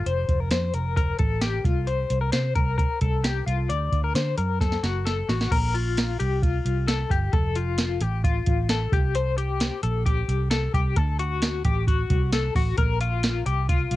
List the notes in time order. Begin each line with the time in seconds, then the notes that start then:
0.06 F1 C5, closed hi-hat
0.29 F1, kick, closed hi-hat
0.40 A#4
0.51 F2 C5, snare, closed hi-hat
0.74 F1 A#4, closed hi-hat
0.97 A#4, kick, closed hi-hat
1.18 A1 A4, kick, closed hi-hat
1.41 G4, snare, closed hi-hat
1.65 C2 F4, kick, closed hi-hat
1.87 C5, closed hi-hat
2.10 C2, closed hi-hat
2.21 A#4
2.32 C3 C5, snare, closed hi-hat
2.55 C2 A#4, kick, closed hi-hat
2.78 A#4, kick, closed hi-hat
3.01 C2 A4, kick, closed hi-hat
3.24 G4, snare, closed hi-hat
3.47 C2 F4, closed hi-hat
3.69 D2 D5, closed hi-hat
3.92 D2, kick, closed hi-hat
4.04 A#4
4.15 D3 C5, snare, closed hi-hat
4.38 F#2 A#4, closed hi-hat
4.61 A4, kick, snare, closed hi-hat
4.72 snare
4.83 F#1 F#4, snare, closed hi-hat
5.05 A4, snare, closed hi-hat
5.29 A1 F#4, snare, open hi-hat
5.41 snare
5.51 A#1 A#4, kick, closed hi-hat, crash
5.74 F4, closed hi-hat
5.97 snare, closed hi-hat
6.20 C2 G4, closed hi-hat
6.43 F4, kick, closed hi-hat
6.65 C2, closed hi-hat
6.88 A4, snare, closed hi-hat
7.10 G1 G4, kick, closed hi-hat
7.33 F1 A4, kick, closed hi-hat
7.55 F4, closed hi-hat
7.78 snare, closed hi-hat
8.01 A1 G4, closed hi-hat
8.24 F4, kick, closed hi-hat
8.46 A1, kick, closed hi-hat
8.69 A4, snare, closed hi-hat
8.92 C2 G4, kick, closed hi-hat
9.15 C5, closed hi-hat
9.38 G4, closed hi-hat
9.60 snare, closed hi-hat
9.83 A#1 A4, closed hi-hat
10.06 G4, kick, closed hi-hat
10.28 C2, closed hi-hat
10.50 A4, snare, closed hi-hat
10.74 C2 G4, kick, closed hi-hat
10.96 D2 A4, kick, closed hi-hat
11.19 F#4, closed hi-hat
11.42 snare, closed hi-hat
11.65 A1 G4, kick, closed hi-hat
11.87 F#4, kick, closed hi-hat
12.10 C2, kick, closed hi-hat
12.32 A4, snare, closed hi-hat
12.55 A1 F#4, kick, open hi-hat
12.78 A#1 A#4, kick, closed hi-hat
13.01 F4, closed hi-hat
13.23 snare, closed hi-hat
13.46 C2 G4, closed hi-hat
13.69 F4, kick, closed hi-hat
13.91 C2, closed hi-hat